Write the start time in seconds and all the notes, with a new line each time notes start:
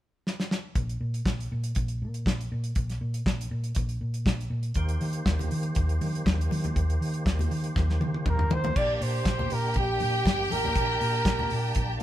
0.27 snare
0.40 snare
0.51 snare
0.75 A#1, kick, closed hi-hat
0.89 closed hi-hat
1.01 A#2
1.14 closed hi-hat
1.26 A#1, kick, snare
1.40 closed hi-hat
1.52 A#2
1.64 closed hi-hat
1.75 A#1, kick, closed hi-hat
1.88 closed hi-hat
2.02 A#2
2.14 closed hi-hat
2.26 A#1, kick, snare
2.41 closed hi-hat
2.52 A#2
2.64 closed hi-hat
2.75 A#1, kick, closed hi-hat
2.90 snare, closed hi-hat
3.01 A#2
3.14 closed hi-hat
3.26 A#1, kick, snare
3.41 closed hi-hat
3.51 A#2
3.64 closed hi-hat
3.75 A#1, kick, closed hi-hat
3.89 closed hi-hat
4.01 A#2
4.14 closed hi-hat
4.26 A#1, kick, snare
4.41 closed hi-hat
4.50 A#2
4.63 closed hi-hat
4.74 D#2 D#3 A#3 G4 C5, kick, closed hi-hat, muted conga
4.89 closed hi-hat
5.01 D#3, open hi-hat, muted conga
5.13 closed hi-hat
5.26 D#2, kick, snare, muted conga
5.39 closed hi-hat, low conga
5.51 D#3, open hi-hat
5.63 closed hi-hat
5.75 D#2, kick, closed hi-hat, high conga
5.89 closed hi-hat
6.01 D#3, open hi-hat, high conga
6.15 closed hi-hat
6.26 D#2, kick, snare, high conga
6.41 closed hi-hat
6.51 D#3, open hi-hat, high conga
6.64 closed hi-hat, low conga
6.76 D#2, kick, closed hi-hat
6.90 closed hi-hat
7.01 D#3, open hi-hat
7.14 closed hi-hat
7.26 D#2, kick, snare, muted conga
7.39 closed hi-hat, low conga
7.51 D#3, open hi-hat
7.64 closed hi-hat
7.76 D#2, kick, snare, muted conga, high conga, low conga
7.90 snare
8.00 D#3, high tom, high conga
8.14 high tom
8.26 D#2 A#4, kick, mid tom, muted conga, high conga
8.39 mid tom
8.50 D#3 C5, floor tom, muted conga, high conga
8.64 floor tom, low conga
8.75 A#1 A#3 D4 G4 D5 G5, kick, crash, muted conga
8.95 D5
9.01 A#2 C5, open hi-hat
9.25 A#1, kick, snare, closed hi-hat
9.39 low conga
9.50 A#2 A#4, open hi-hat
9.74 A#1, kick, closed hi-hat, high conga
9.78 G4
10.00 A#2, open hi-hat, high conga
10.26 G1, kick, snare, closed hi-hat, muted conga, high conga
10.50 A1 A#4, open hi-hat, muted conga, high conga
10.65 low conga
10.76 A#1 A5, kick, closed hi-hat, muted conga
11.01 A#2, open hi-hat
11.25 A#1, kick, snare, closed hi-hat
11.39 low conga
11.50 A#2, open hi-hat
11.75 A#1, kick, closed hi-hat, high conga